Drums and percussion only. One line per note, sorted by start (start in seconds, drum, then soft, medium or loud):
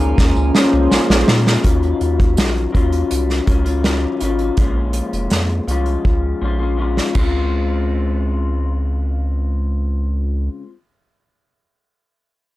0.18 kick loud
0.18 snare medium
0.18 tambourine medium
0.36 tambourine soft
0.55 snare medium
0.55 tambourine medium
0.91 snare medium
0.91 tambourine medium
1.10 snare medium
1.10 tambourine soft
1.28 snare loud
1.28 tambourine soft
1.47 snare loud
1.47 tambourine soft
1.64 kick medium
1.64 closed hi-hat medium
1.83 closed hi-hat soft
2.01 closed hi-hat medium
2.20 kick medium
2.20 closed hi-hat medium
2.37 snare loud
2.37 closed hi-hat medium
2.56 closed hi-hat soft
2.75 kick medium
2.75 closed hi-hat medium
2.92 closed hi-hat soft
3.11 closed hi-hat medium
3.30 snare soft
3.30 closed hi-hat soft
3.47 kick medium
3.47 closed hi-hat medium
3.66 closed hi-hat soft
3.84 snare medium
3.84 closed hi-hat medium
4.20 closed hi-hat soft
4.39 closed hi-hat soft
4.57 kick medium
4.57 closed hi-hat medium
4.93 closed hi-hat medium
5.13 closed hi-hat medium
5.30 snare loud
5.30 closed hi-hat medium
5.50 closed hi-hat soft
5.68 closed hi-hat medium
5.86 closed hi-hat soft
6.05 kick medium
6.97 snare medium
7.15 kick medium
7.15 crash medium